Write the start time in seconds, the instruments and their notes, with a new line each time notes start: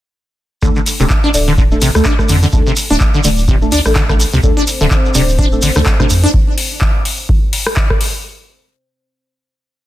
0.62 sub bass D2, acid bass D3, synth stab A3 D4 A4, kick, shekere
0.76 acid bass D3, shekere
0.86 open hi-hat, shekere
1.00 sub bass D1, acid bass C3, synth stab A3 D4 A4, shekere
1.10 kick, clap, shekere
1.24 acid bass D4, shekere
1.34 sub bass D1, synth stab A3 D4 D5, open hi-hat, shekere
1.47 acid bass D3, shekere
1.58 acid bass D3, kick, shekere
1.71 synth stab A3 D4 A4, shekere
1.81 sub bass A1, acid bass C3, open hi-hat, shekere
1.95 sub bass D2, synth stab A3 D4 A4, cross-stick, shekere
2.05 acid bass D4, kick, clap, shekere
2.19 synth stab A3 D4 A4, kick, cross-stick, shekere
2.29 sub bass F2, acid bass D3, open hi-hat, shekere
2.42 acid bass D3, shekere
2.53 sub bass D2, synth stab A3 D4 A4, kick, shekere
2.67 acid bass C3, shekere
2.76 open hi-hat, shekere
2.90 sub bass D1, synth stab A3 D4 A4, acid bass D4, shekere
3.00 kick, clap, shekere
3.14 acid bass D3, shekere
3.24 sub bass D1, acid bass D3, synth stab A3 D4 D5, open hi-hat, shekere
3.38 shekere
3.48 acid bass C3, kick, shekere
3.62 synth stab A3 D4 A4, shekere
3.72 sub bass D2, acid bass D4, open hi-hat, shekere
3.85 sub bass A1, synth stab A3 D4 A4, cross-stick, shekere
3.96 acid bass D3, kick, clap, shekere
4.09 acid bass D3, synth stab A3 D4 A4, kick, cross-stick, shekere
4.20 open hi-hat, shekere
4.33 sub bass D2, acid bass C3, shekere
4.43 sub bass D2, synth stab A3 D4 A4, analog synth pad C4 C5, kick, shekere
4.57 acid bass D4, shekere
4.67 open hi-hat, shekere
4.81 sub bass D1, acid bass D3, synth stab A3 D4 A4, shekere
4.91 acid bass D3, kick, clap, shekere
5.05 shekere
5.14 sub bass D1, acid bass C3, synth stab A3 D4 D5, open hi-hat, shekere
5.29 shekere
5.38 acid bass D4, kick, shekere
5.52 synth stab A3 D4 A4, shekere
5.62 sub bass A1, acid bass D3, open hi-hat, shekere
5.76 sub bass D2, acid bass D3, synth stab A3 D4 A4, cross-stick, shekere
5.86 kick, clap, shekere
6.00 acid bass C3, synth stab A3 D4 A4, kick, cross-stick, shekere
6.10 sub bass F2, open hi-hat, shekere
6.24 acid bass D4, shekere
6.34 kick
6.58 open hi-hat
6.81 kick, clap
7.05 open hi-hat
7.29 kick
7.53 open hi-hat
7.67 cross-stick
7.77 kick, clap
7.90 kick, cross-stick
8.01 open hi-hat